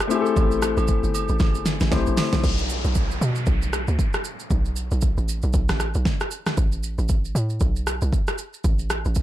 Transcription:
Already playing: A3 C4 E4 G4 B4
0.00 cross-stick
0.07 A3 C4 E4, high agogo, shaker
0.13 G4 G#4
0.21 A4
0.26 shaker
0.37 A1, kick, high agogo, shaker
0.51 shaker
0.62 cross-stick, shaker
0.77 A1, high agogo, shaker
0.88 kick, shaker
1.03 G1, shaker
1.15 high agogo, shaker
1.28 A1, shaker
1.39 A1, kick, snare, high agogo, shaker
1.55 G1, shaker
1.66 snare, shaker
1.80 A1, snare, shaker
1.91 B1 A3 C4 E4 G4 C5, kick, snare, high agogo, low woodblock, shaker
2.06 A1, shaker
2.17 snare, open hi-hat, high agogo, shaker
2.33 B1, snare, shaker
2.44 B1, kick, crash, downlifter, shaker
2.58 shaker
2.70 shaker
2.85 B1, shaker
2.95 kick, shaker
3.11 shaker
3.21 B2, shaker
3.36 shaker
3.46 B1, kick, shaker
3.62 shaker
3.73 cross-stick, shaker
3.88 D2, shaker
3.99 kick, shaker
4.14 cross-stick, shaker
4.24 shaker
4.40 shaker
4.50 B1, kick, shaker
4.65 shaker
4.76 shaker
4.91 B1, shaker
5.02 kick, shaker
5.18 A1, shaker
5.29 shaker
5.42 B1, shaker
5.53 B1, kick, shaker
5.69 A1, cross-stick, snare, shaker
5.80 cross-stick, shaker
5.94 B1, shaker
6.05 kick, snare, shaker
6.20 cross-stick, shaker
6.31 shaker
6.46 cross-stick, snare, shaker
6.57 A1, kick, shaker
6.72 shaker
6.83 shaker
6.98 A1, shaker
7.09 kick, shaker
7.25 shaker
7.35 A2, shaker
7.50 shaker
7.60 B1, kick, shaker
7.76 shaker
7.87 cross-stick, shaker
8.01 C2, shaker
8.13 kick, shaker
8.27 cross-stick, shaker
8.38 shaker
8.54 shaker
8.64 A1, kick, shaker
8.79 shaker
8.90 cross-stick, shaker
9.05 A1, shaker
9.15 kick, shaker

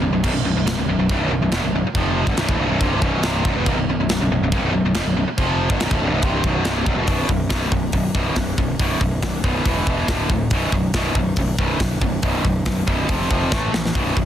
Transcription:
0.00 B0 B1 F#2
0.12 B0 B1 F#2
0.23 B0 B1 F#2, kick, china, crash
0.32 B0 B1 F#2
0.44 B0 B1 F#2
0.55 B0 B1 F#2
0.66 B0 B1 F#2, snare, china
0.77 B0 B1 F#2
0.88 B0 B1 F#2
0.98 B0 B1 F#2
1.09 C1 C2 G2, kick, china
1.19 B0 B1 F#2
1.30 B0 B1 F#2
1.41 B0 B1 F#2
1.52 E1 E2 B2, snare, china
1.62 B0 B1 F#2
1.73 B0 B1 F#2
1.84 muted picked electric bass stroke, muted distorted electric guitar stroke
1.94 F1 F2 C3 F3, kick, china
2.26 G1 G2 D3, kick
2.36 B0 B1 F#2, snare, china
2.48 D1 D2 A2, kick
2.58 C1 C2 G2
2.69 B0 B1 F#2
2.81 C1 C2 G2 C3, kick, china
3.00 B0 B1 F#2 B2, kick
3.22 C1 C2 G2 C3, snare, china
3.45 B0 B1 F#2, kick
3.55 E1 E2 B2
3.66 B0 B1 F#2, kick, china
3.76 B0 B1 F#2
3.87 B0 B1 F#2
3.98 B0 B1 F#2
4.09 B0 B1 F#2, snare, china
4.21 B0 B1 F#2
4.31 B0 B1 F#2
4.41 B0 B1 F#2
4.52 C1 C2 G2, kick, china
4.62 B0 B1 F#2
4.73 B0 B1 F#2
4.83 B0 B1 F#2
4.94 E1 E2 B2, snare, china
5.05 B0 B1 F#2
5.15 B0 B1 F#2
5.26 muted picked electric bass stroke, muted distorted electric guitar stroke
5.38 F1 F2 C3 F3, kick, china
5.69 G1 G2 D3, kick
5.80 B0 B1 F#2, snare, china
5.91 D1 D2 A2, kick
6.00 C1 C2 G2
6.11 B0 B1 F#2
6.22 C1 C2 G2 C3, kick, china
6.44 B0 B1 F#2 B2, kick
6.64 C1 C2 G2 C3, snare, china
6.86 B0 B1 F#2, kick
6.96 E1 E2 B2
7.07 B0 B1 F#2 B2, kick, open hi-hat
7.28 B0 B1 F#2, kick
7.49 B0 B1 F#2 B2, kick, snare, open hi-hat
7.72 B0 B1 F#2, kick
7.92 B0 B1 F#2, kick, open hi-hat
8.14 B0 B1 F#2 B2, kick
8.36 B0 B1 F#2, kick, snare, open hi-hat
8.58 B0 B1 F#2, kick
8.79 B0 B1 F#2 B2, kick, open hi-hat
9.01 B0 B1 F#2, kick
9.22 B0 B1 F#2, kick, snare, open hi-hat
9.44 B0 B1 F#2 B2, kick
9.65 E1 E2 B2 E3, kick, open hi-hat
9.86 E1 E2 B2 E3, kick
10.08 D1 D2 A2 D3, kick, snare, open hi-hat
10.29 D1 D2 A2, kick
10.50 B0 B1 F#2 B2, kick, open hi-hat
10.72 B0 B1 F#2, kick
10.94 B0 B1 F#2 B2, kick, snare, open hi-hat
11.15 B0 B1, kick
11.19 F#2
11.36 B0 B1 F#2, kick, open hi-hat
11.58 B0 B1 F#2 B2, kick
11.79 B0 B1 F#2, kick, snare, open hi-hat
12.01 B0 B1 F#2, kick
12.22 B0 B1 F#2 B2, kick, open hi-hat
12.44 B0 B1 F#2, kick
12.65 B0 B1 F#2, kick, snare, open hi-hat
12.87 B0 B1 F#2 B2, kick
13.09 F1 F2 C3 F3, kick, open hi-hat
13.30 F1 F2 C3 F3, kick
13.52 A1 A2 E3 A3, kick, snare
13.73 A#1 A2 E3, snare
13.86 snare
13.95 B0 B1 F#2 B2, kick, open hi-hat
14.17 B0 B1 F#2, kick

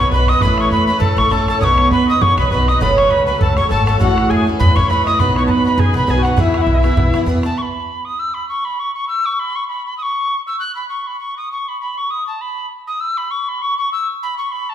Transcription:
Already playing: C#6
0.00 F#3 B3 D#4 B4
0.11 B1 F#3 B3 D#4 B4 B5, bodhran
0.16 B4
0.28 F#3 B3 D#5 D#6, bodhran
0.32 D#4 B4, bodhran
0.41 A1 A2 E3 A3 C#4 B4 B5, bodhran
0.45 E4 A4
0.58 C#5 C#6, bodhran
0.71 E2 B4 B5, bodhran
0.87 A3 C#4 E4 A4 B4 B5
0.99 E2 A4 A5, bodhran
1.17 A1 A3 C#4 E4 A4 C#6, bodhran
1.30 A1 A3 C#4 E4 A4 A5, bodhran
1.47 A3 C#4 E4 A4 A5, bodhran
1.54 bodhran
1.59 B1 B2 F#3 C#5 D#6, bodhran
1.63 B3 D#4 B4 C#6
1.78 bodhran
1.90 F#2 B4 B5, bodhran
2.06 F#3 B3 D#5 D#6
2.10 D#4 B4
2.20 F#2 C#5 C#6, bodhran
2.36 B1 F#3 B3 B4 B5, bodhran
2.41 D#4 B4
2.51 B1 F#3 B3 D#4 B4 B5, bodhran
2.55 B4
2.67 F#3 B3 D#5 D#6, bodhran
2.71 D#4 B4
2.76 B4, bodhran
2.80 F#1 F#2 C#3 F#3 A3 C#4 A4 B5, bodhran
2.96 C#5 C#6, bodhran
3.08 C#2 B4 B5, bodhran
3.24 F#3 A3 B4 B5
3.28 C#4 A4
3.39 C#2 A4 A5, bodhran
3.57 F#1 F#3 A3 C#4 A4 C#5 C#6, bodhran
3.69 G#1 F#3 A3 C#4 A4 A5, bodhran
3.85 F#3 A3 C#4 A4 A5, bodhran
3.95 F#4 F#5, bodhran
3.99 A1 A2 E3 A3 C#4 E4 A4, bodhran
4.18 bodhran
4.29 E2 G#4 G#5, bodhran
4.46 A3 C#4 E4 A4
4.57 E2 B4 B5, bodhran
4.75 A1 A3 C#4 E4 C#5 C#6, bodhran
4.79 A4
4.88 F#2 A3 C#4 B4 B5, bodhran
4.92 E4 A4
5.04 A3 C#4 E4 D#5 D#6, bodhran
5.09 A4
5.19 B1 B2 F#3 B3 D#4 B4 B5, bodhran
5.36 C#5 C#6, bodhran
5.46 F#2 B4 A5, bodhran
5.50 B5
5.64 F#3 B3 D#4 B4 B5
5.78 F#2 G#4 G#5, bodhran
5.93 B1 F#3 B3 D#4 B4 B5
6.07 B1 F#3 B3 D#4 G#4 B4 G#5, bodhran
6.16 F#4 G#5
6.22 F#3 B3 D#4 F#5, bodhran
6.27 B4
6.31 bodhran
6.36 E2 E3 B3 E4 G#4 E5, bodhran
6.54 F#5, bodhran
6.61 E5
6.67 B1, bodhran
6.74 D#5 E5
6.83 E3 B3 E4 G#4, bodhran
6.97 B1, bodhran
7.13 E2 E3 B3 E4 G#4, bodhran
7.26 E2 E3 B3 E4 G#4, bodhran
7.43 E3 B3 E4 G#4 A5, bodhran
7.51 bodhran
7.57 B5 C#6
8.05 D#6
8.19 E6
8.34 B5
8.48 C#6
8.64 B5
8.79 C#6
8.94 C#6
9.08 E6
9.25 C#6
9.39 B5
9.55 C#6
9.68 B5
9.86 B5
9.97 D#6
10.02 C#6
10.47 E6
10.59 F#6
10.75 B5
10.89 C#6
11.07 B5
11.19 C#6
11.37 D#6
11.51 C#6
11.68 B5
11.80 B5
11.97 C#6
12.10 D#6
12.27 A5
12.41 B5
12.87 D#6
13.00 E6
13.17 B5
13.30 C#6
13.48 B5
13.62 C#6
13.77 C#6
13.92 E6
14.22 B5
14.38 C#6
14.51 B5
14.69 A5

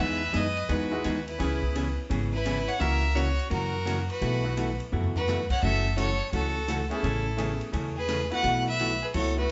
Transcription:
Already playing: E3 G#3
0.00 E2 B3 D#4 G#4 B4 E5
0.32 F#2 E3 G#3 B3 D#4 G#4 B4 D#5, hi-hat pedal, ride
0.57 ride
0.69 E2 E3 G#3 B3 D#4 F#4 G#4 B4, kick, ride
0.91 G#3 D#4 E4 F#4
1.04 D#2 E3 G#3 B3 D#4 G#4, hi-hat pedal, ride
1.27 E4 B4, ride
1.38 C#2 C#3 E3 B3 C#4 E4 G#4, kick, snare, ride
1.63 kick
1.75 C#3 E3 B3 C#4 G#4, hi-hat pedal, ride
2.10 G#1 C#3 E3 B3 C#4 G#4, kick, ride
2.33 E4 B4
2.45 C#3 E3 B3 C#4 G#4, hi-hat pedal, ride
2.68 C#5 F#5, ride
2.79 C#2 C#3 E3 A#3 C#4 E4 F#4 A#4 E5, kick, ride
3.15 C#3 E3 A#3 C#4 F#4 C#5, hi-hat pedal, ride
3.39 ride
3.50 F#2 C#3 E3 A#3 C#4 F#4 A#4, kick, ride
3.86 C#3 E3 A#3 C#4 F#4, hi-hat pedal, ride
4.10 F#4 B4, ride
4.21 B1 B2 E3 A3 E4 F#4, kick, ride
4.44 A3 B3 E4 F#4
4.57 B2 E3 A3 E4 F#4, hi-hat pedal, ride
4.80 ride
4.92 F#2 B2 E3 A3 E4 F#4, floor tom
5.04 floor tom
5.16 F#4 B4, floor tom
5.27 B2 E3 A3 E4 F#4, snare, hi-hat pedal
5.50 C#5 F#5, kick, crash
5.62 F#1 C#3 E3 A3 C#4 F#4 A4 E5, kick
5.97 C#3 E3 A3 C#4 F#4 A4 C#5, hi-hat pedal, ride
6.32 C#2 C#3 E3 A3 C#4 F#4 A4, kick, ride
6.68 C#3 E3 A3 C#4 F#4, hi-hat pedal, ride
6.90 A3 B3 C#4 E4 G#4 A4, ride
7.03 A1 C#3 E3 A3 C#4 G#4, kick, ride
7.37 C#3 E3 A3 B3 C#4 G#4, hi-hat pedal, ride
7.61 ride
7.72 E2 C#3 E3 A3 C#4 G#4, kick, ride
7.96 G#4 B4
8.08 C#3 E3 A3 C#4 G#4, hi-hat pedal, ride
8.30 A3 B3 E4 F#4 B4 F#5, ride
8.43 B1 B2 E3 A3 E4 F#4, kick, ride
8.67 B4 E5
8.79 B2 E3 A3 E4 F#4, hi-hat pedal, ride
9.02 G#4 B4
9.14 C#2 B2 E3 A3 E4 F#4 A4 C#5, kick, ride
9.37 A3 B3 E4 F#4 B4

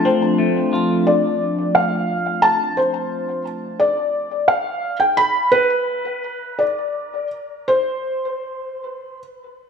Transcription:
Already playing: F3 A3 C4 D4 F4
0.05 C4 C5
0.38 A3
0.73 F4
1.07 D5
1.75 F5
2.42 A5
2.77 C5
3.80 D5
4.48 F5
5.00 G5
5.17 B5
5.52 B4
6.59 D5
7.68 C5

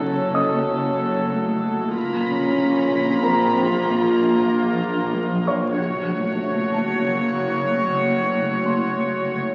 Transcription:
Already playing: F#1 F#3 A4
0.03 C#4
0.34 D#5 D#6
1.31 A3
1.94 A#1 A#3 F4 A#5 B5
2.27 C#4
3.23 C4 A#4 A#5
3.87 A#3
4.07 A#5
5.14 F3
5.47 C#5 C#6
5.78 F#1 F#4 C#5
6.09 A3
6.73 A5
7.05 A#3
7.69 A3
8.66 C6
9.29 A3

